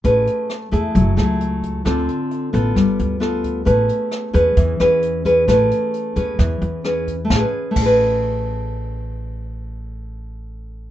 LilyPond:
<<
  \new Staff \with { instrumentName = "Nylon-string guitar" } { \time 4/4 \key a \major \tempo 4 = 132 << { <cis' gis' b'>4 r8 <a e' gis'>4 <a e' gis'>4. | <c' f' a'>4. <b f' a'>4. <b f' a'>4 | <cis' gis' b'>4. <cis' gis' b'>4 <cis' gis' b'>4 <cis' gis' b'>8 | <cis' gis' b'>4. <cis' gis' b'>4. <cis' gis' b'>8 r8 |
<a cis' gis' b'>8 r8 <a cis' gis' b'>2.~ | <a cis' gis' b'>1 | } \\ { a2 fis2 | d2 g2 | a2 e2 | a2 e2 |
r1 | r1 | } >> }
  \new Staff \with { instrumentName = "Upright bass" } { \clef bass \time 4/4 \key a \major a,,8 r4 e,8 fis,,8 cis,4. | d,8 r4 a,,8 g,,8 d,4. | a,,8 r4 e,8 e,8 e,4. | a,,8 r4 e,8 e,8 e,4. |
a,,8 r8 a,,2.~ | a,,1 | }
  \new DrumStaff \with { instrumentName = "Drums" } \drummode { \time 4/4 <hh bd>8 hh8 <hh ss>8 <hh bd>8 <hh bd>8 <hh ss>8 hh8 <hh bd>8 | <hh bd ss>8 hh8 hh8 <hh bd>8 <hh bd ss>8 hh8 <hh ss>8 <hh bd>8 | <hh bd>8 hh8 <hh ss>8 <hh bd>8 <hh bd>8 <hh ss>8 hh8 <hh bd>8 | <hh bd ss>8 hh8 hh8 <hh bd>8 <hh bd ss>8 hh8 <hh ss>8 <hh bd>8 |
<bd sn>4 <cymc bd>4 r4 r4 | r4 r4 r4 r4 | }
>>